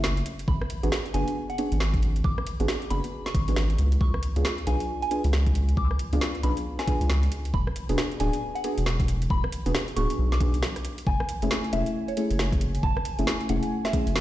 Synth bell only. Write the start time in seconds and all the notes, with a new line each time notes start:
0.48 B5
1.14 G#5
1.50 F#5
2.24 D6
2.90 B5
3.26 C#6
4.01 C#6
4.67 G#5
5.02 G#5
5.77 D6
6.43 B5
6.79 G#5
7.54 B5
8.20 G#5
8.55 F#5
9.30 B5
9.96 C#6
10.32 D6
11.07 G#5
11.73 E5
12.08 C#5
12.83 A5
13.50 F#5
13.85 E5